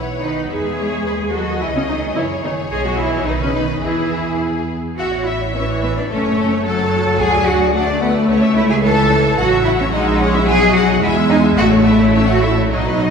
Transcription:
Already playing: double bass section B1, violin section B4 C#5 F#5
0.21 cello section D#3, viola section D#4, violin section B4 F#5
0.50 double bass section E2, cello section G#3, viola section G#4, violin section B4 E5
0.78 violin section C#5
1.05 double bass section D#2, violin section B4
1.33 cello section F#3, viola section F#4, violin section A4 D#5
1.60 double bass section C#2, cello section E3, viola section E4, violin section G#4 C#5
1.74 cello section C#3, viola section C#4
1.88 cello section D#3, viola section D#4
2.16 double bass section F#1, cello section E3, viola section E4, violin section C#5
2.43 cello section D#3, viola section D#4
2.70 double bass section B1, cello section G#3, viola section G#4, violin section D#5
2.84 cello section F#3, viola section F#4
2.98 cello section E3, viola section E4
3.25 double bass section B1, cello section D#3, viola section D#4, violin section B4 D#5
3.40 cello section C#3, viola section C#4
3.54 cello section D#3, viola section D#4
3.82 double bass section E2, cello section E3, viola section E4, violin section G#4 B4
4.98 double bass section A1, cello section F#4, violin section E5 F#5
5.12 violin section C#5
5.26 cello section E4, violin section E5
5.40 violin section C#5
5.54 viola section E3, cello section C#4, violin section C#5 E5
5.68 violin section C#5
5.81 cello section B3, violin section B4 E5
5.95 cello section D4, violin section C#5 D5
6.09 double bass section F#1, viola section A3, cello section C#4, violin section A4 C#5
6.24 violin section C#5
6.37 violin section A4
6.51 violin section C#5
6.65 viola section F#3, violin section A4 A5, cello section A4
6.79 violin section C#5
6.92 violin section A4
7.05 violin section C#5
7.19 double bass section D2, cello section G#4, violin section F#5 G#5
7.33 violin section D5
7.46 cello section F#4, violin section F#5
7.60 violin section D5
7.74 viola section A3, cello section D4, violin section D5 F#5
7.87 violin section D5
8.01 cello section B3, violin section B4 F#5
8.14 violin section D5
8.28 double bass section C#2, cello section C#4, violin section C#5
8.41 violin section E5
8.55 cello section E4, violin section C#5 E5
8.68 cello section G#4, violin section E5 G#5
8.82 viola section E3, cello section A4, violin section C#5 A5
8.95 violin section E5
9.10 violin section C#5
9.24 violin section E5
9.37 double bass section A1, viola section F#3, cello section F#4, violin section F#5
9.51 violin section E5
9.64 cello section E4, violin section E5 F#5
9.78 cello section C#4, violin section C#5 E5
9.91 double bass section A#1, viola section G#3, cello section D#4, violin section D#5 F#5
10.05 violin section E5
10.18 cello section C#4, violin section C#5 F#5
10.33 cello section E4, violin section E5
10.47 double bass section B1, viola section F#3, cello section G#4, violin section F#5 G#5
10.61 violin section D#5
10.74 cello section F#4, violin section F#5
10.88 violin section D#5
11.02 double bass section E2, viola section G#3, cello section E4, violin section E5 G#5
11.16 violin section E5
11.30 cello section D#4, violin section D#5 G#5
11.44 violin section E5
11.57 double bass section A1, viola section A3, cello section F#4, violin section E5 F#5
11.71 violin section C#5
11.85 cello section E4, violin section E5
11.99 violin section C#5
12.13 cello section C#4, violin section C#5 E5
12.28 cello section F#4, violin section C#5 F#5
12.42 cello section E4, violin section E5
12.57 violin section C#5
12.71 double bass section B1, viola section F#3, cello section D#4, violin section D#5
12.86 violin section B4
13.01 violin section D#5

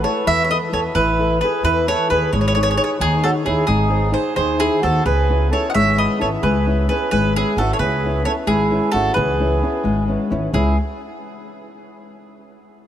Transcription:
0.03 nylon-string guitar E4 A4 B4, accordion A4, mandolin C#5
0.25 upright bass E2, nylon-string guitar E3, accordion B4, mandolin E5
0.42 accordion C#5, mandolin E5
0.50 nylon-string guitar E4 A4, accordion B4, mandolin D#5
0.72 upright bass E2, nylon-string guitar E4 A4 B4, accordion A4, mandolin C#5
0.95 upright bass A1, nylon-string guitar E3, accordion E4, mandolin B4
1.19 nylon-string guitar E4 A4 B4
1.41 nylon-string guitar E4 A4 B4, accordion G#4, mandolin B4
1.63 upright bass E2, nylon-string guitar E3, accordion E4, mandolin B4
1.88 nylon-string guitar E4 A4 B4, accordion A4, mandolin C#5
2.10 upright bass D#2, nylon-string guitar E4 A4 B4, accordion G#4, mandolin B4
2.33 upright bass G#1, nylon-string guitar G#3, accordion G#4, mandolin C#5
2.41 mandolin C#5
2.48 mandolin C#5
2.55 nylon-string guitar D#4 G#4 C#5, mandolin C#5
2.63 mandolin C#5
2.71 mandolin C#5
2.77 nylon-string guitar D#4 G#4 C#5, mandolin C#5
2.84 mandolin C#5
2.99 upright bass D#2, nylon-string guitar D#3, accordion D#4, mandolin G#4
3.23 nylon-string guitar D#4 G#4 C#5, accordion F#4, mandolin A4
3.45 upright bass D#2, nylon-string guitar D#4 G#4 C#5, accordion E4, mandolin G#4
3.67 upright bass G#1, nylon-string guitar G#3, accordion D#4, mandolin G#4
3.90 nylon-string guitar D#4 G#4 C5
4.12 nylon-string guitar D#4 G#4 C5, accordion G#4, mandolin C5
4.36 upright bass D#2, nylon-string guitar D#3, accordion G#4, mandolin C5
4.58 nylon-string guitar D#4 G#4 C5, accordion E4, mandolin G#4
4.81 upright bass D#2, nylon-string guitar D#4 G#4 C5, accordion F#4, mandolin A4
5.05 upright bass C#2, nylon-string guitar C#3, accordion G#4, mandolin B4
5.29 nylon-string guitar B3 C#4 E4
5.51 nylon-string guitar B3 C#4 E4, accordion A4, mandolin C#5
5.70 accordion D#5, mandolin F#5
5.75 upright bass G#1, nylon-string guitar G#3, accordion C#5, mandolin E5
5.97 nylon-string guitar B3 C#4 E4, accordion B4, mandolin D#5
6.18 upright bass G#1, nylon-string guitar B3 C#4 E4, accordion A4, mandolin C#5
6.42 upright bass C#2, nylon-string guitar G#3, accordion G#4, mandolin B4
6.66 nylon-string guitar B3 C#4 E4
6.89 nylon-string guitar B3 C#4 E4, accordion G#4, mandolin B4
7.11 upright bass G#1, nylon-string guitar G#3, accordion G#4, mandolin B4
7.35 nylon-string guitar B3 C#4 E4, accordion E4, mandolin G#4
7.57 upright bass G#1, nylon-string guitar B3 C#4 E4, accordion F#4, mandolin A4
7.73 accordion A4, mandolin C#5
7.79 upright bass C#2, nylon-string guitar C#3, accordion G#4, mandolin B4
8.04 nylon-string guitar B3 C#4 E4
8.25 nylon-string guitar B3 C#4 E4, accordion A4, mandolin C#5
8.47 upright bass G#1, nylon-string guitar G#3, accordion E4, mandolin G#4
8.70 nylon-string guitar B3 C#4 E4
8.92 upright bass G#1, nylon-string guitar B3 C#4 E4, accordion F#4, mandolin A4
9.14 upright bass C#2, nylon-string guitar E3, accordion G#4, mandolin B4
9.40 nylon-string guitar B3 C#4 E4
9.62 nylon-string guitar B3 C#4 E4
9.84 upright bass G#1, nylon-string guitar G#3
10.08 nylon-string guitar B3 C#4 E4
10.30 upright bass G#1, nylon-string guitar B3 C#4 E4
10.53 upright bass C#2, nylon-string guitar C#3 G#3 B3 C#4 E4, accordion E4, mandolin G#4

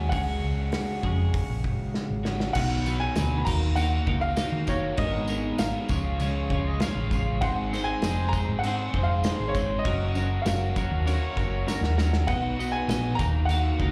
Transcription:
Already playing: clean electric guitar F#3 G#3 C#4 F#4, overdriven electric guitar A#3 C#4 F#4, upright piano G#5
0.09 fingered electric bass C#2, clean electric guitar C#3 G#3 C#4, upright piano F#5, kick, open hi-hat
0.14 clean electric guitar F#4 G#4
0.44 fingered electric bass C#2
0.72 snare, open hi-hat
1.03 fingered electric bass F2, clean electric guitar C#3 G#3 C#4 F#4 G#4, kick
1.34 kick, open hi-hat
1.49 fingered electric bass A#1
1.64 kick
1.94 snare
2.10 fingered electric bass G#1
2.23 overdriven electric guitar G#3 C#4 F#4, snare
2.40 snare
2.53 fingered electric bass B1, clean electric guitar B2 D#3 F#3 B3 B4, upright piano F#5, kick, crash, tambourine
2.58 clean electric guitar D#4
2.86 clean electric guitar B2 D#3 F#3 B3 D#4 B4, tambourine
3.00 upright piano G#5
3.15 fingered electric bass D2, clean electric guitar B2 D#3 F#3 B3 D#4 B4, snare, tambourine, crash
3.38 upright piano B5
3.45 fingered electric bass D#2, clean electric guitar D#3 A#3 D#4 F#4 A#4 F5, overdriven electric guitar F#3, upright piano A#5, kick, tambourine, crash
3.75 clean electric guitar D#3 A#3 D#4 F#4 A#4 F5, overdriven electric guitar F#3, upright piano F#5, tambourine, crash
4.06 fingered electric bass C#2, clean electric guitar D#3 A#3 D#4 F#4 A#4 F5, overdriven electric guitar F#3, kick
4.21 upright piano F5
4.36 clean electric guitar D#3 A#3 D#4 F#4 A#4 F5, overdriven electric guitar F#3, snare, tambourine, crash
4.52 fingered electric bass D#3
4.66 clean electric guitar D#3 A#3 D#4 F#4 A#4 F5, overdriven electric guitar F#3, upright piano C#5, kick, tambourine
4.97 fingered electric bass G#1, overdriven electric guitar D#3, clean electric guitar G#3 B3 D#4 A#4, upright piano D#5, kick, tambourine, crash
5.28 overdriven electric guitar D#3, clean electric guitar G#3 B3 D#4 A#4, tambourine
5.58 fingered electric bass G#1, overdriven electric guitar D#3, clean electric guitar G#3 B3 D#4 A#4, upright piano F5, snare, tambourine, crash
5.88 fingered electric bass C#2, clean electric guitar C#3 F3 G#3 C#4 F4 C#5, kick, tambourine
6.19 clean electric guitar C#3 F3 G#3 C#4 F4 C#5, trumpet C#5, tambourine, crash
6.50 fingered electric bass C#2, clean electric guitar C#3 F3 G#3 C#4 F4 C#5, kick
6.67 trumpet D#5
6.80 clean electric guitar C#3 F3 G#3 C#4 F4 C#5, trumpet F5, snare, tambourine, crash
6.96 fingered electric bass A1
7.11 clean electric guitar C#3 F3 G#3 C#4 F4 C#5, kick, tambourine
7.41 fingered electric bass G#1, overdriven electric guitar D#3, clean electric guitar G#3 C4 D#4 G#4 C5, upright piano F#5, kick, tambourine, crash
7.72 overdriven electric guitar D#3, clean electric guitar G#3 C4 D#4 G#4 C5, snare, tambourine
7.84 upright piano G#5
8.02 fingered electric bass F1, overdriven electric guitar D#3, clean electric guitar G#3 C4 D#4 G#4 C5, snare, tambourine, crash
8.29 upright piano A#5
8.33 overdriven electric guitar D#3, clean electric guitar G#3 C4 D#4 G#4 C5, kick, tambourine
8.48 fingered electric bass G#2
8.59 overdriven electric guitar D#3, upright piano F#5
8.63 clean electric guitar G#3 C4 D#4 G#4 C5, tambourine, crash
8.94 fingered electric bass F1, overdriven electric guitar D#3, clean electric guitar G#3 C4 D#4 G#4 C5, kick
9.03 upright piano F5
9.23 overdriven electric guitar D#3, clean electric guitar G#3 C4 D#4 G#4 C5, snare, tambourine, crash
9.40 fingered electric bass G#1
9.48 upright piano C#5
9.54 overdriven electric guitar D#3, clean electric guitar G#3 C4 D#4 G#4 C5, kick, tambourine
9.79 upright piano D#5
9.84 fingered electric bass F#1, clean electric guitar F#3 C#4 F#4 A#4 C#5, overdriven electric guitar A#3, kick, tambourine, crash
10.15 clean electric guitar F#3 C#4 F#4 A#4 C#5, overdriven electric guitar A#3, tambourine
10.42 clean electric guitar F#3 C#4, overdriven electric guitar A#3, upright piano F5, tambourine, crash
10.46 fingered electric bass F#1, clean electric guitar F#4 A#4 C#5, snare
10.76 clean electric guitar F#3 C#4 F#4 A#4 C#5, overdriven electric guitar A#3, kick, tambourine
10.91 fingered electric bass D#2
11.06 clean electric guitar F#3 C#4 F#4 A#4 C#5, overdriven electric guitar A#3, trumpet C#5, tambourine, crash
11.36 fingered electric bass F#1, clean electric guitar F#3 C#4 F#4 A#4 C#5, overdriven electric guitar A#3, kick, tambourine
11.67 clean electric guitar F#3 C#4 F#4 A#4 C#5, overdriven electric guitar A#3, trumpet A#4, snare, tambourine
11.81 fingered electric bass D#2, snare
11.97 clean electric guitar F#3 C#4 F#4 A#4 C#5, overdriven electric guitar A#3, snare, tambourine
12.13 snare
12.27 fingered electric bass B1, overdriven electric guitar F#3 D#4, clean electric guitar B3 F#4 B4 D#5, upright piano F#5, kick, tambourine, crash
12.58 overdriven electric guitar F#3 D#4, clean electric guitar B3 F#4 B4 D#5, tambourine
12.72 upright piano G#5
12.87 fingered electric bass A#1, overdriven electric guitar F#3 D#4, clean electric guitar B3 F#4 B4 D#5, snare, tambourine, crash
13.15 clean electric guitar D#3 A#3 D#4 A#4, overdriven electric guitar F#3, upright piano A#5
13.19 fingered electric bass D#2, clean electric guitar F#4 F5, kick, tambourine
13.45 clean electric guitar D#3 A#3 D#4, overdriven electric guitar F#3, upright piano F#5, crash
13.50 clean electric guitar F#4 A#4 F5, tambourine
13.77 fingered electric bass C#2, clean electric guitar D#3 A#3 D#4 F#4 A#4, overdriven electric guitar F#3, kick
13.82 clean electric guitar F5

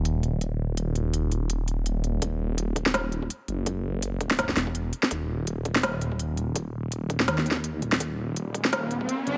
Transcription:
Already playing: detuned saw bass D#1
0.05 closed hi-hat
0.23 closed hi-hat
0.41 closed hi-hat
0.77 closed hi-hat
0.95 closed hi-hat
1.14 closed hi-hat
1.32 closed hi-hat
1.50 closed hi-hat
1.68 closed hi-hat
1.86 closed hi-hat
2.04 closed hi-hat
2.22 detuned saw bass D#1, kick, closed hi-hat
2.58 closed hi-hat
2.76 kick, closed hi-hat
2.86 snare
2.94 detuned saw bass D#1, snare, closed hi-hat
3.12 closed hi-hat
3.22 kick
3.30 closed hi-hat
3.48 detuned saw bass F#1, closed hi-hat
3.66 kick, closed hi-hat
4.02 closed hi-hat
4.21 kick, closed hi-hat
4.31 snare
4.39 snare, closed hi-hat
4.49 snare
4.57 detuned saw bass E1, snare, closed hi-hat
4.67 kick
4.75 closed hi-hat
4.93 closed hi-hat
5.03 snare
5.11 detuned saw bass D#1, kick, closed hi-hat
5.47 closed hi-hat
5.65 kick, closed hi-hat
5.76 snare
5.83 detuned saw bass D#1, snare, closed hi-hat
6.01 closed hi-hat
6.12 kick
6.19 detuned saw bass D#1, closed hi-hat
6.37 closed hi-hat
6.56 kick, closed hi-hat
6.92 closed hi-hat
7.10 kick, closed hi-hat
7.20 snare
7.28 detuned saw bass D#2, snare, closed hi-hat
7.38 snare
7.46 closed hi-hat
7.51 snare
7.56 kick
7.64 closed hi-hat
7.82 detuned saw bass D#1, kick, closed hi-hat
7.92 snare
8.00 detuned saw bass D#1, kick, closed hi-hat, riser
8.36 closed hi-hat
8.54 kick, closed hi-hat
8.65 snare
8.73 detuned saw bass D#1, snare, closed hi-hat
8.91 closed hi-hat
9.01 kick
9.09 closed hi-hat
9.27 detuned saw bass F#1, closed hi-hat

